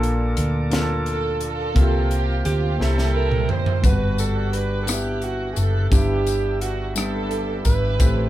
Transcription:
Already playing: fingered electric bass A#1, grand piano A#2 A#3 D4 F4 A4, tonewheel organ F3 A#3 D4 A4
0.03 closed hi-hat
0.37 fingered electric bass D2, closed hi-hat
0.70 grand piano A#3 D4 F4 A4, snare, closed hi-hat
0.80 grand piano A4
1.06 string section A4, closed hi-hat
1.41 string section F4, closed hi-hat
1.45 string section A4
1.74 fingered electric bass C2, grand piano C3 A#3 C4 E4 G4, tonewheel organ F3 A#3 C4 F4, kick, closed hi-hat
1.82 grand piano F4, tonewheel organ G4
2.11 string section G4, closed hi-hat
2.45 fingered electric bass D2, alto saxophone G4, string section G4, closed hi-hat
2.50 string section F4
2.77 fingered electric bass C2, grand piano C3 A#3 C4 E4 G4, tonewheel organ E3 A#3 C4 G4, alto saxophone A4, snare
2.82 string section G3 A#3 E4 A4
2.98 snare
3.15 alto saxophone A#4
3.32 mid tom
3.49 string section C5, alto saxophone C5, floor tom
3.66 floor tom
3.82 fingered electric bass G1, grand piano G2 G3 A#3 D4 F#4, tonewheel organ D3 G3 B3 F#5, alto saxophone B4, string section B4, kick, closed hi-hat, tambourine
3.86 grand piano B3, string section D4 F#4
4.18 alto saxophone A4, string section A4, closed hi-hat, tambourine
4.53 alto saxophone B4, string section B4, closed hi-hat
4.82 alto saxophone A4
4.86 grand piano G3 B3 D4 E4, alto saxophone G4, string section G4, cross-stick, closed hi-hat, tambourine
5.22 alto saxophone F#4, string section F#4, closed hi-hat
5.52 alto saxophone G#4
5.56 fingered electric bass F#1, alto saxophone A4, string section A4, closed hi-hat, tambourine
5.90 fingered electric bass G1, grand piano G2 G3 B3 D4 E4, tonewheel organ D3 F#3 B3 E4, string section B3 D4 G4, alto saxophone G4, kick, closed hi-hat, tambourine
5.98 tonewheel organ G3
6.27 closed hi-hat, tambourine
6.61 alto saxophone F#4, string section F#4, closed hi-hat
6.95 grand piano G3 B3 D4 G4, string section D4 E4 A4, alto saxophone A4, cross-stick, closed hi-hat, tambourine
7.31 closed hi-hat
7.65 fingered electric bass G#1, string section E4 G4 B4, alto saxophone B4, kick, closed hi-hat, tambourine
7.99 fingered electric bass A1, grand piano A2 A3 C4 E4 G4, tonewheel organ E3 A3 C4 G4, kick, closed hi-hat, tambourine

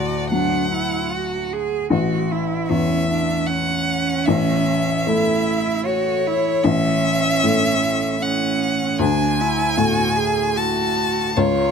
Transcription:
Already playing: felt piano D2 A2, cello F#4, violin D5
0.30 felt piano F#3, cello D4, violin F#5
0.72 cello E4
1.12 cello F#4
1.52 cello G#4
1.90 felt piano A1, cello F#4
2.32 cello E4
2.68 felt piano E2, cello C#4, violin E5
3.10 cello D4
3.46 cello C#4, violin F#5
4.26 felt piano A1, violin E5
5.07 felt piano A3, cello E4
5.85 cello F#4, violin C#5
6.27 cello E4
6.63 felt piano A1, cello C#4, violin E5
7.44 felt piano A2
8.22 cello C#4, violin F#5
8.99 felt piano D2, cello D4, violin G#5
9.40 cello E4
9.77 felt piano A2, cello F#4
10.17 cello G#4
10.57 cello F#4, violin A5
11.36 felt piano C#2, cello F4, violin C#5

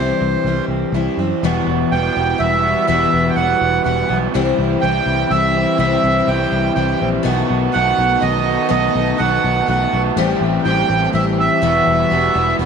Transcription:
Already playing: fingered electric bass C2, clean electric guitar C3 E3 G3 E4, twelve-string acoustic guitar E3 G3 C4 E4, accordion C5
0.21 fingered electric bass C2, clean electric guitar E3
0.44 fingered electric bass C2, twelve-string acoustic guitar E3 C4, clean electric guitar G3
0.49 twelve-string acoustic guitar E4
0.68 fingered electric bass C2, clean electric guitar C4
0.92 fingered electric bass C2, twelve-string acoustic guitar E3 G3 C4, clean electric guitar E4
1.17 fingered electric bass F#2, clean electric guitar C4, twelve-string acoustic guitar E4
1.22 twelve-string acoustic guitar G3
1.42 fingered electric bass E1, clean electric guitar E2 B2 E3 G3 B3 F#4, string section G3 E4
1.66 fingered electric bass E1, clean electric guitar E3 G3 B3 F#4
1.91 fingered electric bass E1, clean electric guitar E2 B2 E3 G3 B3 F#4, accordion G5
2.16 fingered electric bass E1, twelve-string acoustic guitar E3 G3 B3 F#4
2.38 fingered electric bass E1, twelve-string acoustic guitar E3 G3 B3 F#4, accordion E5
2.63 clean electric guitar E3 G3 B3 F#4
2.88 fingered electric bass E1, clean electric guitar E2 B2 E3 G3 B3, accordion E5
2.92 clean electric guitar F#4
3.12 fingered electric bass E1, clean electric guitar E3 G3 B3 F#4
3.29 accordion G5
3.36 fingered electric bass E1, clean electric guitar E2 B2 E3 G3 B3, accordion F#5
3.40 clean electric guitar F#4
3.61 fingered electric bass E1
3.84 fingered electric bass E1, twelve-string acoustic guitar E3 G3 B3 F#4, accordion F#5
4.08 fingered electric bass B1, clean electric guitar E3 G3 B3 F#4
4.32 fingered electric bass C2, clean electric guitar C3 E3 G3 C4 E4, string section C4 E4 G4
4.57 fingered electric bass C2, clean electric guitar G3 C4 E4
4.81 fingered electric bass C2, clean electric guitar C3 E3 G3 C4, accordion G5
4.85 clean electric guitar E4
5.06 fingered electric bass C2
5.30 fingered electric bass C2, twelve-string acoustic guitar E3 G3 C4 E4, accordion E5
5.54 clean electric guitar G3 C4 E4
5.78 fingered electric bass C2, clean electric guitar C3 E3 G3 C4 E4, accordion E5
6.02 fingered electric bass C2, clean electric guitar G3 C4 E4
6.26 fingered electric bass C2, clean electric guitar C3 E3 G3 C4 E4, accordion G5
6.52 fingered electric bass C2
6.75 fingered electric bass C2, twelve-string acoustic guitar E3 G3 C4 E4, accordion G5
6.99 fingered electric bass A#1, clean electric guitar G3 C4 E4
7.23 fingered electric bass B1, clean electric guitar B2 D#3 A3 B3 F#4, string section B3 D#4 A4
7.48 fingered electric bass B1, clean electric guitar A3 B3 F#4
7.72 fingered electric bass B1, clean electric guitar B2 D#3 A3 B3 F#4, accordion F#5
7.97 fingered electric bass B1, twelve-string acoustic guitar A3 B3 F#4
8.20 fingered electric bass B1, twelve-string acoustic guitar D#3 A3 B3 F#4, accordion D#5
8.46 clean electric guitar A3 B3 F#4
8.70 fingered electric bass B1, clean electric guitar B2 D#3 A3 B3 F#4, accordion D#5
8.95 fingered electric bass B1, clean electric guitar A3 B3 F#4
9.18 fingered electric bass B1, clean electric guitar B2 D#3 A3 B3, accordion F#5
9.22 clean electric guitar F#4
9.44 fingered electric bass B1
9.66 fingered electric bass B1, twelve-string acoustic guitar D#3 A3 B3 F#4, accordion F#5
9.93 fingered electric bass B1, clean electric guitar A3 B3 F#4
10.16 fingered electric bass A1, clean electric guitar A2 E3 G3 C4 G4, string section A3 C4 G4
10.40 fingered electric bass A1, clean electric guitar G3 C4 G4
10.64 fingered electric bass A1, clean electric guitar A2 E3 G3 C4 G4, accordion G5
10.89 fingered electric bass A1, twelve-string acoustic guitar G3 C4 G4
11.13 fingered electric bass A1, twelve-string acoustic guitar E3 G3 C4 G4, accordion E5
11.38 clean electric guitar G3 C4 G4, accordion E5
11.61 fingered electric bass E1, clean electric guitar E2 B2 E3, string section G3 E4 F#4
11.65 clean electric guitar G3 B3 F#4
11.87 fingered electric bass E1, clean electric guitar E3 G3 B3 F#4
12.11 fingered electric bass E1, clean electric guitar E2 B2 E3 G3 B3 F#4
12.35 fingered electric bass E1, twelve-string acoustic guitar E3 G3 B3 F#4
12.59 fingered electric bass E1, twelve-string acoustic guitar E3 G3 B3 F#4

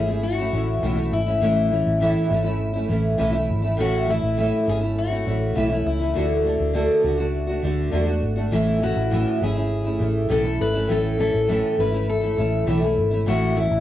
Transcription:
Already playing: fingered electric bass G#1, steel-string acoustic guitar G#4
0.08 nylon-string guitar A3 C#4 E4
0.23 steel-string acoustic guitar F#4
0.38 nylon-string guitar A3 C#4 E4
0.53 fingered electric bass A1, nylon-string guitar E3 A3 C#4 E4
0.82 fingered electric bass B1, nylon-string guitar A2 E3 A3 C#4 E4
0.97 nylon-string guitar A3 C#4 E4
1.12 fingered electric bass G#1, steel-string acoustic guitar E4
1.26 nylon-string guitar A3 C#4 E4
1.41 fingered electric bass A1, nylon-string guitar A2 E3 A3 C#4 E4
1.70 nylon-string guitar E3 A3 C#4 E4
1.87 fingered electric bass A1
2.00 nylon-string guitar A2 E3 A3 C#4 E4
2.29 fingered electric bass G#1, nylon-string guitar E3 A3 C#4 E4
2.44 nylon-string guitar A3 C#4 E4
2.74 nylon-string guitar A3 C#4 E4
2.88 fingered electric bass A1, nylon-string guitar E3 A3 C#4 E4
3.18 fingered electric bass B1, nylon-string guitar A2 E3 A3 C#4 E4
3.33 nylon-string guitar A3 C#4 E4
3.49 fingered electric bass G#1
3.62 nylon-string guitar A3 C#4 E4
3.77 fingered electric bass A1, nylon-string guitar A2 E3 A3 C#4 E4, steel-string acoustic guitar F#4
4.07 nylon-string guitar E3 A3 C#4 E4, steel-string acoustic guitar E4
4.23 fingered electric bass A1
4.37 nylon-string guitar A2 E3 A3 C#4 E4
4.66 fingered electric bass G#1, nylon-string guitar E3 A3 C#4 E4, steel-string acoustic guitar G#4
4.81 nylon-string guitar A3 C#4 E4
4.98 steel-string acoustic guitar F#4
5.10 nylon-string guitar A3 C#4 E4
5.25 fingered electric bass A1, nylon-string guitar E3 A3 C#4 E4
5.55 fingered electric bass B1, nylon-string guitar A2 E3 A3 C#4 E4
5.63 steel-string acoustic guitar E4
5.69 nylon-string guitar A3 C#4 E4
5.86 fingered electric bass C#2, steel-string acoustic guitar E4
5.99 nylon-string guitar A3 C#4 E4
6.14 fingered electric bass D2, nylon-string guitar D3 A3 D4 F#4
6.44 nylon-string guitar D3 A3 D4 F#4
6.60 fingered electric bass D2
6.74 nylon-string guitar D3 A3 D4 F#4
7.03 fingered electric bass C#2, nylon-string guitar D3 A3 D4 F#4
7.18 nylon-string guitar A3 D4 F#4
7.47 nylon-string guitar A3 D4 F#4
7.62 fingered electric bass D2, nylon-string guitar D3 A3 D4 F#4
7.91 fingered electric bass E2, nylon-string guitar D3 A3 D4 F#4
8.06 nylon-string guitar A3 D4 F#4
8.22 fingered electric bass G#1
8.36 nylon-string guitar A3 D4 F#4
8.51 fingered electric bass A1, nylon-string guitar A2 E3 A3 C#4 E4
8.80 nylon-string guitar E3 A3 C#4 E4, steel-string acoustic guitar F#4
8.96 fingered electric bass A1
9.10 nylon-string guitar A2 E3 A3 C#4 E4
9.40 fingered electric bass G#1, nylon-string guitar E3 A3 C#4 E4, steel-string acoustic guitar G#4
9.55 nylon-string guitar A3 C#4 E4
9.84 nylon-string guitar A3 C#4 E4
9.99 fingered electric bass A1, nylon-string guitar E3 A3 C#4 E4
10.29 fingered electric bass B1, nylon-string guitar A2 E3 A3 C#4 E4, steel-string acoustic guitar A4
10.44 nylon-string guitar A3 C#4 E4
10.60 fingered electric bass G#1, steel-string acoustic guitar B4
10.73 nylon-string guitar A3 C#4 E4
10.88 fingered electric bass A1, nylon-string guitar A2 E3 A3 C#4 E4, steel-string acoustic guitar A4
11.17 nylon-string guitar E3 A3 C#4 E4, steel-string acoustic guitar A4
11.34 fingered electric bass A1
11.48 nylon-string guitar A2 E3 A3 C#4 E4
11.77 fingered electric bass G#1, nylon-string guitar E3 A3 C#4 E4, steel-string acoustic guitar B4
11.92 nylon-string guitar A3 C#4 E4
12.10 steel-string acoustic guitar A4
12.21 nylon-string guitar A3 C#4 E4
12.37 fingered electric bass A1, nylon-string guitar E3 A3 C#4 E4
12.66 fingered electric bass B1, nylon-string guitar A2 E3 A3 C#4 E4
12.81 nylon-string guitar A3 C#4 E4
12.97 fingered electric bass G#1
13.11 nylon-string guitar A3 C#4 E4
13.26 fingered electric bass A1, nylon-string guitar A2 E3 A3 C#4 E4, steel-string acoustic guitar F#4
13.56 nylon-string guitar E3 A3 C#4 E4, steel-string acoustic guitar E4
13.71 fingered electric bass A1

